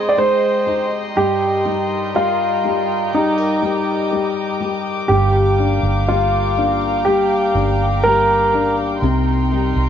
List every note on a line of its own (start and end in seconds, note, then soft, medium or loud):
0.00 0.18 G#3 soft
0.00 1.11 G#3 soft
0.00 1.15 G#3 medium
0.00 1.65 C4 soft
0.00 0.17 D#4 soft
0.00 0.68 D#4 soft
0.00 0.23 G4 soft
0.00 0.13 G#4 medium
0.00 5.05 D#5 soft
0.00 1.12 G5 soft
0.00 3.08 C6 medium
0.09 0.16 D5 medium
0.17 1.13 G#3 soft
0.17 1.65 D#4 soft
0.17 0.88 C5 medium
0.67 1.15 D#4 soft
0.67 3.16 G4 medium
1.15 5.08 G2 medium
1.15 5.05 G3 medium
1.15 1.64 G3 medium
1.15 2.17 G4 medium
1.15 5.05 A#4 soft
1.15 5.05 G5 soft
1.65 2.14 G3 soft
1.65 2.62 D#4 soft
2.15 2.64 G3 soft
2.15 3.09 F4 medium
2.15 3.13 A#4 soft
2.64 3.13 G3 soft
2.64 3.61 D#4 soft
3.11 3.60 G3 soft
3.11 4.57 D#4 medium
3.11 3.38 G#4 soft
3.11 8.98 D6 medium
3.38 4.10 A#4 soft
3.62 4.11 G3 soft
3.62 5.19 D#4 soft
4.11 4.59 G3 soft
4.11 6.07 A#4 soft
4.60 5.08 G3 soft
4.60 8.10 G4 soft
5.08 5.79 G1 medium
5.08 9.02 G2 medium
5.08 6.07 G3 medium
5.08 6.03 G4 medium
5.08 8.99 A#4 medium
5.08 8.99 F5 soft
5.08 9.89 G5 soft
5.58 6.57 A#3 soft
5.58 6.56 D4 soft
5.83 7.51 G1 medium
6.07 7.05 G3 soft
6.07 7.05 D4 soft
6.07 7.09 F4 medium
6.57 7.55 A#3 soft
6.57 7.54 D4 soft
7.05 8.03 G3 soft
7.05 8.03 D4 soft
7.05 8.00 G4 medium
7.55 8.98 G1 medium
7.55 9.51 A#3 soft
7.55 8.53 D4 soft
8.04 9.00 G3 soft
8.04 9.12 D4 soft
8.04 8.74 A#4 medium
8.54 9.01 D4 soft
8.54 9.89 G4 medium
9.02 9.72 C2 medium
9.02 9.89 C3 medium
9.02 9.89 D#4 medium
9.02 9.89 A#4 medium
9.02 9.89 C6 medium
9.52 9.89 G3 soft
9.52 9.89 D#4 soft
9.76 9.89 C2 medium